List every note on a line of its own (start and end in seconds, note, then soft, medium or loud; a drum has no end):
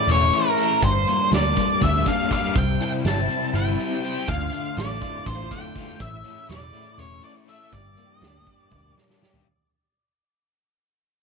0.00 0.33 A2 medium
0.00 0.79 C#3 medium
0.00 0.80 E3 medium
0.00 0.82 A3 medium
0.00 0.32 E4 medium
0.00 0.80 E4 medium
0.00 0.11 D5 medium
0.07 0.29 E1 medium
0.07 0.82 C#4 medium
0.07 closed hi-hat medium
0.11 0.35 C#5 medium
0.33 0.82 E4 medium
0.33 0.80 A#4 medium
0.33 closed hi-hat medium
0.57 0.83 A4 medium
0.57 closed hi-hat medium
0.70 tambourine soft
0.80 1.03 G1 loud
0.80 2.06 G2 medium
0.80 4.23 G3 medium
0.80 2.52 A#3 medium
0.80 2.52 D4 medium
0.80 1.29 C5 medium
0.80 kick loud
0.80 closed hi-hat medium
0.80 tambourine medium
1.07 1.81 A#3 medium
1.07 closed hi-hat medium
1.32 1.53 D2 medium
1.32 2.05 D4 medium
1.32 1.79 D5 medium
1.32 snare loud
1.32 closed hi-hat medium
1.44 tambourine soft
1.56 2.55 G3 medium
1.56 kick medium
1.56 closed hi-hat medium
1.56 tambourine soft
1.69 tambourine medium
1.81 2.02 D2 medium
1.81 2.56 A#3 medium
1.81 2.05 E5 medium
1.81 kick loud
1.81 closed hi-hat medium
2.06 2.55 D4 medium
2.06 2.32 F5 medium
2.06 kick medium
2.06 snare soft
2.06 closed hi-hat medium
2.31 2.55 G4 medium
2.31 2.55 F5 medium
2.31 kick medium
2.31 snare soft
2.31 closed hi-hat medium
2.54 2.76 C2 loud
2.54 3.79 C3 medium
2.54 4.25 C4 medium
2.54 4.25 E4 medium
2.54 kick loud
2.54 closed hi-hat medium
2.54 tambourine medium
2.58 2.80 G5 medium
2.81 3.53 E4 medium
2.81 2.89 G5 medium
2.81 closed hi-hat medium
2.81 tambourine soft
2.94 tambourine soft
3.05 3.25 G1 medium
3.05 3.78 G4 medium
3.05 3.52 A5 medium
3.05 snare loud
3.05 closed hi-hat medium
3.30 4.28 C4 medium
3.30 closed hi-hat medium
3.30 tambourine soft
3.42 tambourine medium
3.54 3.75 G1 medium
3.54 4.28 E4 medium
3.54 4.31 G5 medium
3.54 closed hi-hat medium
3.79 4.28 G4 medium
3.79 closed hi-hat medium
4.04 4.29 C5 medium
4.04 closed hi-hat medium
4.16 tambourine soft
4.28 4.49 D2 loud
4.28 5.51 D2 medium
4.28 7.70 A3 medium
4.28 5.99 D4 medium
4.28 5.99 F4 medium
4.28 4.74 F5 medium
4.28 kick loud
4.28 closed hi-hat medium
4.28 tambourine medium
4.52 5.26 D3 medium
4.52 closed hi-hat medium
4.52 tambourine soft
4.65 tambourine soft
4.77 4.98 A1 medium
4.77 5.50 A3 medium
4.77 5.24 D5 medium
4.77 snare loud
4.77 closed hi-hat medium
5.01 5.98 A2 medium
5.01 kick medium
5.01 closed hi-hat medium
5.01 tambourine soft
5.26 5.47 A1 medium
5.26 6.01 D3 medium
5.26 5.52 C5 medium
5.26 kick loud
5.26 closed hi-hat loud
5.51 6.00 A3 medium
5.51 6.02 G5 medium
5.51 kick medium
5.51 snare soft
5.51 closed hi-hat medium
5.75 6.00 F4 medium
5.75 kick medium
5.75 snare soft
5.75 closed hi-hat medium
5.88 tambourine soft
5.99 6.21 A1 loud
5.99 7.23 A2 medium
5.99 7.71 C#3 medium
5.99 7.71 E4 medium
5.99 6.46 E5 medium
5.99 kick loud
5.99 closed hi-hat medium
5.99 tambourine medium
6.24 6.96 C#4 medium
6.24 closed hi-hat medium
6.24 tambourine soft
6.37 tambourine soft
6.48 6.70 E1 medium
6.48 7.21 E4 medium
6.48 6.96 D5 medium
6.48 snare loud
6.48 closed hi-hat medium
6.73 7.72 A3 medium
6.73 closed hi-hat medium
6.73 tambourine soft
6.87 tambourine medium
6.98 7.19 E1 medium
6.98 7.72 C#4 medium
6.98 7.22 C#5 medium
6.98 closed hi-hat medium
7.22 7.72 E4 medium
7.22 7.31 D5 medium
7.22 closed hi-hat medium
7.48 7.73 A4 medium
7.48 7.73 E5 medium
7.48 closed hi-hat medium
7.61 tambourine soft
7.71 7.94 G1 loud
7.71 8.96 G2 medium
7.71 9.43 A#3 medium
7.71 9.43 D4 medium
7.71 9.43 G4 medium
7.71 8.15 D5 medium
7.71 kick loud
7.71 closed hi-hat medium
7.71 tambourine medium
7.97 8.70 A#3 medium
7.97 closed hi-hat medium
7.97 tambourine soft
8.15 8.27 D#5 medium
8.22 8.43 D2 medium
8.22 8.96 D4 medium
8.22 snare loud
8.22 closed hi-hat medium
8.22 tambourine soft
8.27 8.39 D5 medium
8.39 8.51 D#5 medium
8.47 9.46 G3 medium
8.47 kick medium
8.47 closed hi-hat medium
8.47 tambourine soft
8.51 8.93 D5 medium
8.60 tambourine medium
8.71 8.92 D2 medium
8.71 9.46 A#3 medium
8.71 kick loud
8.71 high tom medium
8.97 9.46 D4 medium
8.97 snare medium
9.09 snare medium
9.09 tambourine soft
9.22 9.46 G4 medium
9.22 snare medium
9.34 floor tom medium